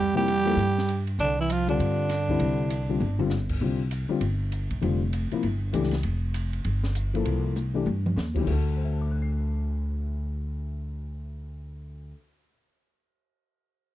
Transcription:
0.00 0.55 F2 medium
0.00 0.14 G3 medium
0.00 0.15 G4 medium
0.15 0.26 C3 medium
0.15 0.26 F3 medium
0.15 1.03 G3 medium
0.15 0.26 A#3 medium
0.15 0.27 E4 medium
0.15 1.04 G4 loud
0.28 hi-hat pedal medium
0.28 ride medium
0.45 0.56 F3 medium
0.45 0.57 A#3 medium
0.45 0.57 E4 medium
0.45 0.57 A4 medium
0.45 ride soft
0.57 1.15 G2 medium
0.57 ride medium
0.78 snare soft
0.89 hi-hat pedal soft
0.89 ride medium
1.07 ride soft
1.19 1.76 C2 medium
1.19 1.36 D3 medium
1.19 1.37 D4 loud
1.19 ride medium
1.38 1.52 E3 medium
1.38 1.54 E4 medium
1.50 1.69 F3 medium
1.50 1.69 F4 medium
1.50 hi-hat pedal medium
1.50 ride medium
1.68 2.07 D3 medium
1.68 3.28 D3 medium
1.68 2.07 G3 medium
1.68 2.08 C4 medium
1.68 3.28 D4 medium
1.68 2.08 F4 medium
1.68 ride soft
1.79 2.37 G2 medium
1.79 ride medium
2.09 snare soft
2.09 hi-hat pedal soft
2.09 ride medium
2.29 2.68 D3 medium
2.29 2.68 G3 medium
2.29 2.69 C4 medium
2.29 2.69 E4 medium
2.29 kick soft
2.39 2.97 C2 medium
2.39 ride medium
2.70 hi-hat pedal medium
2.70 ride medium
2.89 2.99 D3 medium
2.89 3.00 G3 medium
2.89 3.00 C4 medium
2.89 3.00 F4 medium
3.00 3.58 G1 medium
3.00 floor tom soft
3.19 3.29 D3 medium
3.19 3.30 G3 medium
3.19 3.30 C4 medium
3.19 3.30 F4 medium
3.19 floor tom medium
3.30 snare medium
3.30 hi-hat pedal medium
3.49 kick medium
3.49 crash medium
3.61 4.07 C2 medium
3.61 3.78 D3 medium
3.61 3.78 G3 soft
3.61 3.79 C4 medium
3.61 3.79 F4 medium
3.91 hi-hat pedal medium
3.91 ride medium
4.09 4.20 D3 medium
4.09 4.20 G3 medium
4.09 4.20 C4 medium
4.09 4.21 F4 medium
4.09 muted upright bass stroke soft
4.21 4.67 G1 medium
4.21 ride medium
4.52 hi-hat pedal medium
4.52 ride medium
4.71 4.81 B1 medium
4.71 ride soft
4.81 5.28 F1 medium
4.81 4.99 D3 medium
4.81 4.99 G3 medium
4.81 5.00 C4 medium
4.81 5.00 F4 medium
4.81 ride soft
5.13 hi-hat pedal soft
5.13 ride medium
5.31 5.42 C3 medium
5.31 5.42 F3 medium
5.31 5.42 A#3 medium
5.31 5.43 E4 medium
5.31 muted upright bass stroke soft
5.31 ride soft
5.43 5.71 G1 medium
5.43 ride medium
5.73 6.01 C#2 medium
5.73 5.90 E3 medium
5.73 5.91 A3 medium
5.73 5.91 D4 medium
5.73 5.91 G4 medium
5.73 hi-hat pedal soft
5.73 ride medium
5.83 snare soft
5.91 snare soft
5.91 ride soft
6.03 6.61 F1 medium
6.03 ride medium
6.34 hi-hat pedal medium
6.34 ride medium
6.53 ride soft
6.64 7.22 G1 medium
6.64 ride medium
6.84 snare soft
6.95 hi-hat pedal medium
6.95 ride medium
7.14 7.53 F3 medium
7.14 7.54 A#3 medium
7.14 7.54 E4 medium
7.14 7.54 A4 medium
7.14 ride soft
7.25 7.83 C2 medium
7.25 ride medium
7.56 hi-hat pedal medium
7.56 high tom soft
7.74 7.84 E3 medium
7.74 7.85 A3 medium
7.74 7.85 D4 medium
7.74 7.85 G4 medium
7.86 8.14 G2 medium
7.86 high tom medium
8.06 mid tom medium
8.16 8.44 D#2 medium
8.16 snare medium
8.16 hi-hat pedal soft
8.34 8.45 F#3 medium
8.34 8.45 B3 soft
8.34 8.46 E4 soft
8.34 8.46 G4 medium
8.34 kick medium
8.34 crash medium
8.40 12.09 D2 medium
8.40 12.13 D3 medium
8.46 12.12 D2 medium
8.46 12.15 A3 medium
8.46 12.19 F#4 medium
8.46 kick medium
8.46 crash medium
8.52 12.21 A4 medium
8.77 12.35 C5 soft
8.84 12.39 E5 soft
8.93 12.43 A5 soft
9.01 12.48 D6 soft
9.11 12.52 F#6 soft
9.22 12.58 C7 soft

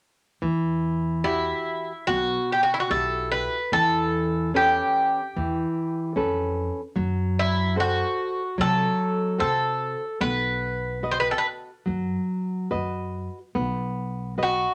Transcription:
0.42 1.51 E2 medium
0.42 1.23 E3 soft
1.24 2.07 E4 medium
1.24 1.92 E4 soft
1.24 1.92 F#4 soft
1.24 1.92 G4 soft
2.07 2.35 B1 medium
2.07 2.89 B2 soft
2.07 2.52 F#4 medium
2.52 2.63 G4 medium
2.63 2.73 F#4 medium
2.74 2.80 E4 medium
2.80 2.90 F#4 medium
2.90 3.44 B1 medium
2.90 3.56 E4 soft
2.90 3.56 F#4 soft
2.90 3.57 G4 soft
2.90 3.31 A4 medium
3.32 3.73 B4 medium
3.72 4.79 E2 medium
3.72 4.52 E3 medium
3.72 4.51 A4 medium
4.54 5.20 C#4 soft
4.54 6.54 G4 medium
4.54 5.21 A4 soft
4.54 5.20 B4 soft
5.36 5.63 E2 medium
5.36 6.15 E3 medium
6.16 6.69 F2 medium
6.16 6.80 C#4 soft
6.16 6.81 A4 soft
6.16 6.81 B4 soft
6.96 8.01 F#2 medium
6.96 7.74 F#3 medium
7.39 7.76 E4 medium
7.76 8.41 F#4 soft
7.76 8.42 A4 soft
7.76 8.42 C5 soft
7.80 8.56 F#4 medium
8.58 8.85 C3 medium
8.58 9.37 F#3 medium
8.58 9.39 A4 medium
9.38 9.93 C3 medium
9.38 10.04 F#4 soft
9.38 10.04 A4 soft
9.38 10.21 A4 medium
9.38 10.04 C5 soft
10.21 11.29 B1 medium
10.21 11.00 B3 medium
10.21 11.04 B4 medium
11.03 11.70 F#4 soft
11.03 11.70 B4 soft
11.03 11.70 D#5 soft
11.11 11.19 C5 medium
11.20 11.28 B4 medium
11.31 11.38 A4 medium
11.38 11.46 B4 medium
11.86 12.14 F#2 medium
11.86 12.68 F#3 soft
12.71 13.26 F#2 medium
12.71 13.38 F#4 soft
12.71 13.38 B4 soft
12.71 13.38 D#5 soft
13.55 14.63 B1 medium
13.55 14.35 B3 medium
14.38 14.74 F#4 soft
14.38 14.74 B4 soft
14.38 14.74 D#5 soft
14.43 14.74 F#4 medium

